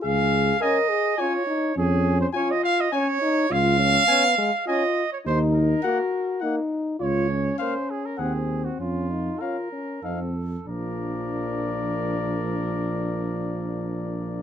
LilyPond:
<<
  \new Staff \with { instrumentName = "Trumpet" } { \time 3/4 \key des \major \tempo 4 = 102 r4 aes''4 aes''4 | r4 aes''4 aes''4 | r4 aes''4 aes''4 | r4 ges''4 ges''4 |
r4 f''4 ges''4 | r4 f''4 f''4 | d''2.~ | d''2. | }
  \new Staff \with { instrumentName = "Trumpet" } { \time 3/4 \key des \major f''4 ees''4 des''4 | aes'8. c''16 des''16 ees''16 f''16 ees''16 des''4 | f''2 ees''8. des''16 | c''8 bes'4. r4 |
des''4 c''8 aes'16 bes'16 aes'8. ges'16 | f'4 bes'4 a'4 | bes'2.~ | bes'2. | }
  \new Staff \with { instrumentName = "French horn" } { \time 3/4 \key des \major aes'4 bes'8 aes'8 f'8 ees'8 | des'4 f'4 des'8 ees'8 | f'8 des'8 ces'8 aes8 f'8 r8 | ees'4 ges'4 ees'4 |
f'8 des'4. c'4 | des'8 ees'8 f'8 des'8 c'8 r8 | d'2.~ | d'2. | }
  \new Staff \with { instrumentName = "Trombone" } { \time 3/4 \key des \major r4 des'4 des'4 | r4 des'4 des'4 | r4 des'4 des'4 | r4 bes4 bes4 |
r4 bes4 c'4 | r4 des'4 ees'4 | f2.~ | f2. | }
  \new Staff \with { instrumentName = "Tuba" } { \clef bass \time 3/4 \key des \major des,4 r2 | f,4 r2 | des,4 r2 | ees,4 r2 |
des,4 r4 ees,4 | f,4 r4 f,4 | bes,,2.~ | bes,,2. | }
>>